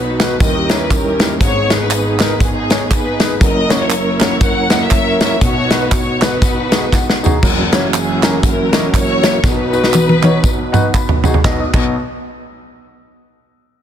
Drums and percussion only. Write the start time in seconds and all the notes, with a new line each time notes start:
0.20 snare, clap, closed hi-hat, tambourine
0.40 kick, closed hi-hat, tambourine
0.69 snare, closed hi-hat, tambourine
0.90 kick, clap, closed hi-hat, tambourine
1.20 snare, closed hi-hat, tambourine
1.41 kick, closed hi-hat, tambourine
1.70 snare, closed hi-hat, tambourine
1.91 clap, closed hi-hat, tambourine
2.19 snare, clap, closed hi-hat, tambourine
2.40 kick, closed hi-hat, tambourine
2.70 snare, closed hi-hat, tambourine
2.91 kick, clap, closed hi-hat, tambourine
3.20 snare, closed hi-hat, tambourine
3.41 kick, closed hi-hat, tambourine
3.70 snare, closed hi-hat, tambourine
3.90 clap, closed hi-hat, tambourine
4.20 snare, clap, closed hi-hat, tambourine
4.41 kick, closed hi-hat, tambourine
4.70 snare, closed hi-hat, tambourine
4.91 kick, clap, closed hi-hat, tambourine
5.21 snare, closed hi-hat, tambourine
5.41 kick, closed hi-hat, tambourine
5.71 snare, closed hi-hat, tambourine
5.92 kick, clap, closed hi-hat, tambourine
6.21 snare, clap, closed hi-hat, tambourine
6.42 kick, closed hi-hat, tambourine
6.72 snare, closed hi-hat, tambourine
6.92 kick, snare, clap, tambourine
7.10 snare
7.24 floor tom, tambourine
7.43 kick, crash, tambourine
7.73 snare, closed hi-hat, tambourine
7.94 clap, closed hi-hat, tambourine
8.23 snare, clap, closed hi-hat, tambourine
8.43 kick, closed hi-hat, tambourine
8.73 snare, closed hi-hat, tambourine
8.94 kick, clap, closed hi-hat, tambourine
9.23 snare, closed hi-hat, tambourine
9.44 kick, snare, tambourine
9.73 tambourine
9.84 snare
9.94 clap, high tom, tambourine
10.09 high tom
10.23 clap, high tom, tambourine
10.44 kick, tambourine
10.74 mid tom, tambourine
10.94 kick, clap, tambourine
11.09 floor tom
11.24 floor tom, tambourine
11.34 floor tom
11.44 kick, snare, clap
11.74 kick, clap, crash